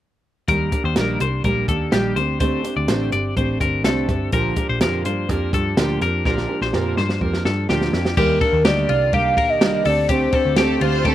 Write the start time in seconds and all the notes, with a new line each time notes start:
0.48 D#2 D#3 G3 A#3 D4 G4 A#4, kick, closed hi-hat
0.72 A#3 D4 G4, kick, closed hi-hat
0.84 D#2 C5
0.96 A#1 D#3 G3 A#3 D4 G4 A#4, snare, closed hi-hat
1.20 C2 A#3 D4 G4 C5, closed hi-hat
1.44 A#1 G3 A#3 D4 G4 A#4, kick, closed hi-hat
1.68 D#2 A#3 D4 G4 A4, kick, closed hi-hat
1.92 A#1 D#3 G3 A#3 D4 G4, snare, closed hi-hat
2.16 D2 C4 D4 G4 C5, closed hi-hat
2.40 D3 A3 C4 D4 G4 C5, kick, closed hi-hat
2.64 C4 D4 G4, closed hi-hat
2.76 D2 D5
2.88 A1 D3 A3 C4 D4 G4 C5, snare, closed hi-hat
3.12 G1 C4 D4 G4 D5, closed hi-hat
3.36 A1 A3 C4 D4 G4 C5, kick, closed hi-hat
3.60 G1 C4 D4 G4 A#4, kick, closed hi-hat
3.84 C2 D3 A3 C4 D4 G4 A4, snare, closed hi-hat
4.08 G1 C4 D4 G4, kick, closed hi-hat
4.32 A#1 A#2 D3 F3 A#3 D4 G4 A#4, kick, closed hi-hat
4.56 F3 A#3 D4 G4, kick, closed hi-hat
4.69 A#1 C5
4.81 F2 A#2 D3 F3 A#3 D4 G4 A#4, snare, closed hi-hat
5.05 G2 F3 A#3 D4 G4 C5, closed hi-hat
5.29 F2 F3 A#3 D4 G4 A#4, kick, closed hi-hat
5.53 G2 F3 A#3 D4 G4 A4, kick, closed hi-hat
5.77 D2 A#2 D3 F3 A#3 D4 G4, snare, closed hi-hat
6.01 F2 F3 A#3 D4 G4 A#4, closed hi-hat
6.25 A#1 A#2 D3 F3 A#3 D4 G4 A#4, kick, snare
6.38 snare
6.49 F3 A#3 D4 G4
6.61 A#1 C5, snare
6.73 F2 A#2 D3 F3 A#3 D4 G4 A#4, snare
6.97 G2 F3 A#3 D4 G4 C5, snare
7.09 snare
7.21 F2 F3 A#3 D4 G4 A#4, kick
7.34 snare
7.44 G2 F3 A#3 D4 G4 A4, snare
7.69 D2 A#2 D3 F3 A#3 D4 G4, snare
7.81 snare
7.92 F2 F3 A#3 D4 G4, snare
8.05 snare
8.17 D#2 D3 D#3 G3 A#3 D4 G4 A#4, kick, crash
8.40 A#3 D4 G4 A4, kick, ride
8.53 D#2
8.65 D2 D#3 G3 A#3 D4 G4 D5, snare, ride
8.89 C2 A#3 D4 F4 G4, ride
9.12 G3 A#3 D4 G4 F5, kick, ride
9.36 A#1 A#3 D4 G4 A#4, kick, ride
9.49 D#5
9.60 C2 D#3 G3 A#3 D4 G4, snare, ride
9.84 D2 D3 A3 C4 D4 G4 A4 D5, open hi-hat, ride
10.09 D3 A3 C4 D4 G4 C5, kick, hi-hat pedal, ride
10.32 C4 D4 G4 A4, kick, ride
10.45 D2
10.56 D3 A3 C4 D4 G4 A4, snare, ride
10.80 D2 C4 D4 F4 G4 C5, ride
11.04 A3 C4 D4 G4 A4, kick, ride